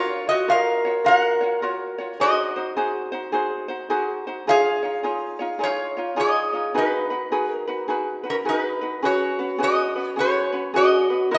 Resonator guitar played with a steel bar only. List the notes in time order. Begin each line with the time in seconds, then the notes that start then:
Already playing: F4 C#5
0.29 F#4 D#5
0.50 A#4 F5
1.06 A#4 F5
1.17 F#5
2.21 F#4 D#5
4.49 G#4 F5
5.63 F4 C#5
6.20 G#4 D#5
6.78 D#4 B4
7.49 A#4
8.30 C#4 A#4
8.49 D#4 B4
9.05 F#4 C#5
9.63 F#4 D#5
10.08 C#5
10.19 F#4 C#5
10.76 F#4 D#5
11.34 A#4 E5